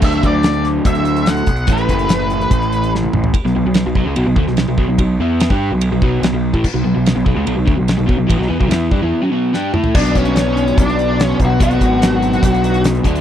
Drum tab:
CC |x---------------|----------------|----------------|----------------|
RD |----------------|----------------|b---b---b---b---|b---b---b---b---|
HH |-xx-xxx-xxxxxxxx|xxxxx-xxxxxx----|----------------|----------------|
SD |----o-o-----o---|----o-------o---|-o--o------oo---|----o-------o---|
T1 |----------------|-------------o--|----------------|----------------|
T2 |----------------|--------------o-|----------------|----------------|
FT |----------------|---------------o|----------------|----------------|
BD |o-o-----o-----o-|o-o-----o-------|o-----o---o---o-|o----o----o----o|

CC |x---------------|----------------|x---------------|----------------|
RD |----b---b---b---|b---b-----------|----------------|----------------|
HH |----------------|----------------|-xxxx-xxxxx-x-x-|xxx-x-xxxxxxxxxx|
SD |----o-------o---|-o--o-------o---|----o-------o---|----o-------o---|
T1 |----------------|----------------|----------------|----------------|
T2 |----------------|--------------o-|----------------|----------------|
FT |----------------|---------------o|----------------|----------------|
BD |o-----o---o---o-|o--o--o---------|o-o-----o-----o-|o-o-----o-----o-|